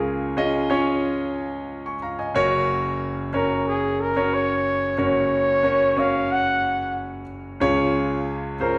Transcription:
Already playing: C#2 C#3 C#4 F4 G#4 A#4 C#5
0.37 C#4 F4 G#4 D#5
0.70 C#4 F4 G#4 C#5
1.86 G#5 C#6
2.02 F5 A#5
2.19 D#5 G#5
2.35 F#1 F#2 C#4 F#4 A#4 C#5
3.33 C#4 F#4 A#4 C#5
3.68 G#4
4.01 A#4
4.16 C#4 F#4 A#4 C#5
4.34 C#5
4.98 F#1 F#2 C#4 F#4 A#4 C#5
5.63 C#4 F#4 A#4 C#5
5.96 C#4 F#4 A#4 C#5 F5
6.32 F#5
7.60 C#2 C#3 C#4 F4 G#4 C#5
8.60 C#4 F4 G#4 A#4 C5

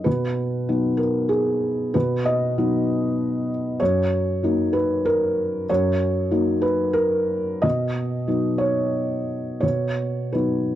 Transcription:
0.04 B2 B4
0.69 F#3 B3 D#4
0.97 A#4
1.29 G#4
1.94 B2 B4
2.25 D#5
2.58 F#3 B3 D#4
3.80 F#2 C#5
4.43 F#3 A#3 D#4
4.73 B4
5.05 A#4
5.69 F#2 C#5
6.31 F#3 A#3 D#4
6.62 B4
6.93 A#4
7.62 B2 D#5
8.28 F#3 B3 D#4
8.58 C#5
9.60 B2 C#5
10.33 F#3 B3 D#4 B4

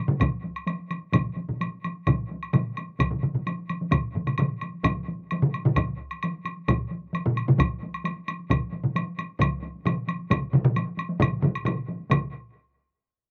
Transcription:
0.08 taiko low-mid, taiko mid
0.20 taiko, taiko low-mid, taiko mid, taiko high, high woodblock
0.33 taiko high
0.44 taiko high
0.56 high woodblock
0.67 taiko high, high woodblock
0.79 taiko high
0.90 taiko high, high woodblock
1.02 taiko high
1.13 taiko, taiko low-mid, taiko mid, taiko high, high woodblock
1.25 taiko high
1.36 taiko high
1.49 taiko low-mid, taiko mid
1.61 taiko high, high woodblock
1.72 taiko high
1.84 taiko high, high woodblock
2.07 taiko, taiko low-mid, taiko mid, taiko high, high woodblock
2.20 taiko high
2.31 taiko high
2.43 taiko high, high woodblock
2.53 taiko low-mid, taiko mid, taiko high, high woodblock
2.67 taiko high
2.77 taiko high, high woodblock
2.89 taiko high
2.99 taiko, taiko low-mid, taiko mid, taiko high, high woodblock
3.11 taiko low-mid, taiko mid, taiko high
3.23 taiko low-mid, taiko mid, taiko high
3.35 taiko low-mid, taiko mid
3.47 taiko high, high woodblock
3.58 taiko high
3.69 taiko high, high woodblock
3.81 taiko high
3.92 taiko, taiko low-mid, taiko mid, taiko high, high woodblock
4.15 taiko low-mid, taiko mid, taiko high
4.27 taiko low-mid, taiko mid, taiko high, high woodblock
4.38 taiko low-mid, taiko mid, taiko high, high woodblock
4.51 taiko high
4.61 taiko high, high woodblock
4.74 taiko high
4.83 taiko, taiko low-mid, taiko mid, taiko high, high woodblock
4.97 taiko high
5.08 taiko high
5.19 taiko high
5.31 taiko high, high woodblock
5.42 taiko low-mid, taiko mid
5.54 taiko high, high woodblock
5.65 taiko low-mid, taiko mid
5.76 taiko, taiko low-mid, taiko mid, taiko high, high woodblock
5.89 taiko high
6.11 taiko high, high woodblock
6.23 taiko high, high woodblock
6.34 taiko high
6.45 taiko high, high woodblock
6.57 taiko high
6.68 taiko, taiko low-mid, taiko mid, taiko high, high woodblock
6.79 taiko high
6.91 taiko high
7.02 taiko high
7.13 taiko high, high woodblock
7.26 taiko low-mid, taiko mid
7.36 taiko high, high woodblock
7.48 taiko low-mid, taiko mid
7.59 taiko, taiko low-mid, taiko mid, taiko high, high woodblock
7.70 taiko high
7.83 taiko high
7.94 taiko high, high woodblock
8.04 taiko high, high woodblock
8.16 taiko high
8.28 taiko high, high woodblock
8.40 taiko high
8.50 taiko, taiko low-mid, taiko mid, taiko high, high woodblock
8.62 taiko high
8.73 taiko high
8.84 taiko low-mid, taiko mid
8.96 taiko high, high woodblock
9.18 taiko high, high woodblock
9.40 taiko, taiko low-mid, taiko mid, taiko high, high woodblock
9.52 taiko high
9.63 taiko high
9.75 taiko high
9.86 taiko low-mid, taiko mid, taiko high, high woodblock
9.96 taiko high
10.08 taiko high, high woodblock
10.19 taiko high
10.30 taiko, taiko low-mid, taiko mid, taiko high, high woodblock
10.53 taiko low-mid, taiko mid, taiko high
10.65 taiko low-mid, taiko mid, taiko high
10.76 taiko high, high woodblock
10.87 taiko high
10.97 taiko high, high woodblock
11.09 taiko high
11.20 taiko, taiko low-mid, taiko mid, taiko high, high woodblock
11.31 taiko high
11.42 taiko low-mid, taiko mid, taiko high
11.55 taiko high, high woodblock
11.65 taiko low-mid, taiko mid, taiko high, high woodblock
11.88 taiko high
12.00 taiko high
12.10 taiko, taiko low-mid, taiko mid, taiko high, high woodblock

